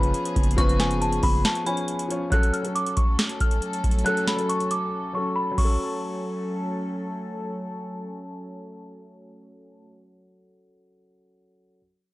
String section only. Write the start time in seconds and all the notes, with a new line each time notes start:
Already playing: F3 B3 C#4 G#4
2.32 F#3 A3 C#4 A4
5.58 F#3 A3 C#4 A4